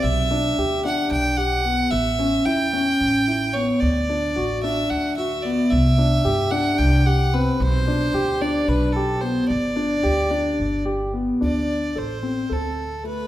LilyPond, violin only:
\new Staff \with { instrumentName = "Violin" } { \time 7/8 \key g \major \tempo 4 = 111 e''4. fis''8 g''8 fis''4 | e''4 g''2 cis''8 | d''4. e''8 fis''8 e''8 d''8 | e''4. fis''8 g''8 fis''8 b'8 |
c''4. d''8 b'8 a'8 c''8 | d''2~ d''8 r4 | d''4 c''4 a'4 b'8 | }